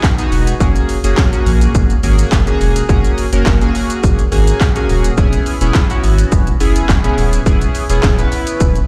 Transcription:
Already playing: B3 D#4 F#4 G#4
0.03 kick, snare, clap, shaker
0.18 B3 D#4 F#4 G#4, closed hi-hat, shaker
0.32 E1, open hi-hat, shaker
0.47 closed hi-hat, shaker
0.60 F#1 A#3 C#4 F#4 G#4, kick, shaker
0.76 closed hi-hat, shaker
0.89 open hi-hat, shaker
1.04 F#1 A#3 C#4 F#4 G#4, closed hi-hat, shaker
1.17 kick, snare, clap, shaker
1.33 A#3 C#4 F#4 G#4, closed hi-hat, shaker
1.46 A#1, open hi-hat, shaker
1.61 closed hi-hat, shaker
1.75 F#1, kick, shaker
1.90 closed hi-hat, shaker
2.03 G#1 A#3 C#4 F#4 G#4, open hi-hat, shaker
2.19 closed hi-hat, shaker
2.32 F#1, kick, snare, clap, shaker
2.47 A#3 C#4 F#4 G#4, closed hi-hat, shaker
2.61 E1, open hi-hat, shaker
2.76 closed hi-hat, shaker
2.89 F#1 A#3 C#4 F#4 G#4, kick, shaker
3.04 closed hi-hat, shaker
3.18 open hi-hat, shaker
3.33 F#1 A#3 C#4 F#4 A#4, closed hi-hat, shaker
3.46 F#1, kick, snare, clap, shaker
3.61 A#3 C#4 F#4 G#4, closed hi-hat, shaker
3.75 open hi-hat, shaker
3.90 closed hi-hat, shaker
4.03 F#1, kick, shaker
4.19 closed hi-hat, shaker
4.32 G#1 A#3 C#4 F#4 G#4, open hi-hat, shaker
4.47 closed hi-hat, shaker
4.61 kick, snare, clap, shaker
4.76 A#3 C#4 F#4 G#4, closed hi-hat, shaker
4.89 D#1, open hi-hat, shaker
5.04 closed hi-hat, shaker
5.17 E1 B3 C#4 E4 G#4, kick, shaker
5.33 closed hi-hat, shaker
5.46 open hi-hat, shaker
5.61 E1 B3 C#4 E4 G#4, closed hi-hat, shaker
5.74 kick, snare, clap, shaker
5.90 B3 C#4 E4 F#4, closed hi-hat, shaker
6.04 G#1, open hi-hat, shaker
6.18 closed hi-hat, shaker
6.32 E1, kick, shaker
6.47 closed hi-hat, shaker
6.60 F#1 B3 C#4 E4 G#4, open hi-hat, shaker
6.76 closed hi-hat, shaker
6.89 E1, kick, snare, clap, shaker
7.04 B3 C#4 E4 G#4, closed hi-hat, shaker
7.18 D#1, open hi-hat, shaker
7.33 closed hi-hat, shaker
7.46 E1 B3 C#4 E4 G#4, kick, shaker
7.61 closed hi-hat, shaker
7.75 open hi-hat, shaker
7.90 E1 B3 C#4 E4 G#4, closed hi-hat, shaker
8.03 D#1, kick, snare, clap, shaker
8.18 B3 C#4 E4 B4, closed hi-hat, shaker
8.32 open hi-hat, shaker
8.47 closed hi-hat, shaker
8.60 D#1, kick, shaker
8.76 closed hi-hat, shaker

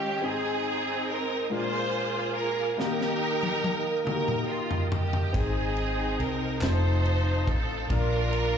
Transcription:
Already playing: D#3 G#3 C#4 D#4 F4 G4 A#4 D#5 F5 C#6
0.22 G#2 C4 D#4 G#4 C5 D#5 G#5 D#6
1.10 A#4
1.50 A#2 G#3 A#3 D4 F4 G#4 A#4 C5 F5 G#5 D6
2.36 A#4
2.77 D#3 A#3 D#4 F#4 G4 A#4 D#5 G5 D#6, snare
2.85 G4
3.01 snare
3.43 high tom
3.64 high tom
4.05 A#3 D#4 F#4 A#4, mid tom
4.13 G4
4.28 mid tom
4.49 F4
4.71 floor tom
4.92 G4, floor tom
5.13 floor tom
5.33 G#1 G#2 C4 D#4 G#4 C5 G#5, kick, ride bell
5.77 ride bell
6.19 C2 A#4, ride bell
6.60 F1 A3 C4 D#4 F4 C5 F5 A5, snare, clap, ride bell
6.65 D#4 A4
7.05 ride bell
7.47 A1 A4, kick, ride bell
7.89 A#1 A#2 D4 F4 A#4 D5 D6, kick, ride bell
8.33 ride bell

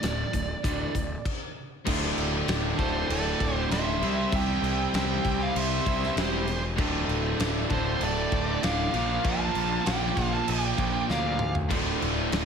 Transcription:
Already playing: D5
0.01 D1 D2 A2, snare, closed hi-hat
0.33 D1 D2 A2, kick, closed hi-hat
0.64 D1 D2 A2 D3, kick, closed hi-hat
0.95 D1 D2 A2, kick, closed hi-hat
1.25 kick, crash
1.86 D1 D2 A2 D3 A3 F4, kick, crash
2.18 D1, crash
2.48 D1, snare, crash
2.77 D1 D2 A2 D3 A4 C5, kick, crash
3.09 D1 A4 D5, crash
3.40 D1, kick, crash
3.54 G4 C5
3.70 D1 D2 A2 D3 C5 E5, snare, crash
4.01 C2 C3 G3 C4 E4 G4 C5, crash
4.31 C2 E5, kick, crash
4.35 G5
4.62 C2, crash
4.93 C2 C3 G3 C4 E5 G5, snare, crash
5.25 C2, kick, crash
5.40 D5 F5
5.55 C2 C5 E5, crash
5.86 C2 C3 G3 C4, kick, crash
6.03 snare
6.16 E1 C3 G3 C4 G4, snare, crash
6.21 C5
6.47 crash
6.77 D1 D2 A2 D3 A3 F4, kick, crash
7.08 D1, crash
7.39 D1, snare, crash
7.70 D1 D2 A2 D3 A4 C5, kick, crash
8.01 D1 A4 D5, crash
8.32 D1, kick, crash
8.62 D1 D2 A2 D3 D5 F5, snare, crash
8.92 A#1 A#2 F3 A#3 D4 F4, crash
8.96 A#4
9.24 A#1 F5 A5, kick, crash
9.55 A#1, crash
9.85 A#1 A#2 F3 A#3 D5 G5, snare, crash
10.17 A#1, kick, crash
10.33 F5 A5
10.48 A#1 D5 G5, crash
10.77 A#1 A#2 F3 A#3, kick, crash
11.06 D2 A#2 F3 A#3 D5, snare
11.11 F5
11.39 mid tom
11.55 floor tom
11.71 D1 D2 A2 D3 A3 F4, kick, crash
12.02 D1, crash
12.32 D1, snare, crash

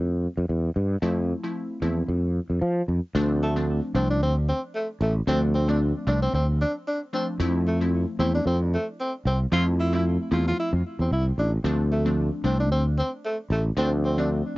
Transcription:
Already playing: F2
0.37 F2
0.49 E2
0.76 G2
1.02 F2 F3 A3 C4 E4
1.43 F3 A3 C4 E4
1.82 E2 F3 A3 C4 E4
2.08 F2
2.50 F2
2.62 F3
2.88 F2
3.15 D2 F3 A3 C4 D4
3.43 A3
3.56 F3 A3 C4 D4
3.94 C2 F3 A3 C4 D4
4.10 D4
4.21 D2 C4
4.49 C4
4.75 A3
5.01 A1 A3
5.27 D2 F3 A3 C4 D4
5.55 C4
5.68 F3 A3 C4 D4
6.07 C2 F3 A3 C4 D4
6.22 C4
6.33 D2 C4
6.61 D4
6.88 D4
7.13 F3 A3 C4 D4
7.39 F2 F3 A3 C4 E4
7.67 A3
7.81 F3 A3 C4 E4
8.19 E2 F3 A3 C4 E4
8.35 D4
8.46 F2 C4
8.74 A3
9.00 C4
9.25 C2 C4
9.52 F2 F3 A3 C4 E4 F4
9.80 E4
9.93 F3 A3 C4 E4
10.31 E2 F3 A3 C4 E4 F4
10.48 F4
10.60 E4
10.73 F2
10.99 E2 C4
11.11 C2 E4
11.38 A1 D4
11.64 D2 F3 A3 C4 D4
11.92 A3
12.05 F3 A3 C4 D4
12.44 C2 F3 A3 C4 D4
12.60 D4
12.71 D2 C4
12.98 C4
13.25 A3
13.50 A1 A3
13.76 D2 F3 A3 C4 D4
14.05 C4
14.18 F3 A3 C4 D4

